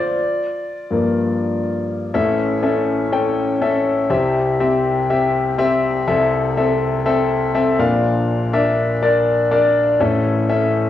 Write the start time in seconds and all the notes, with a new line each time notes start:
Already playing: D3 F3 A3 F4 C5 D5
0.90 G2 F3 A#3
2.14 A1 A2 C#4 A4 E5
2.63 C#4 A4 E5
3.12 C#4 A4 G5
3.62 C#4 A4 E5
4.10 C2 C3 C4 G4 E5
4.60 C4 G4 E5
5.10 C4 G4 E5
5.58 C4 G4 E5
6.07 C2 C3 C4 A4 E5
6.57 C4 A4 E5
7.06 C4 A4 E5
7.54 C4 A4 E5
7.79 A#1 A#2 D4 A#4 F5
8.53 D4 A#4 E5
9.03 D4 A#4 D5
9.51 D4 A#4 D5
10.00 A1 A2 C#4 A4 E5
10.50 C#4 A4 E5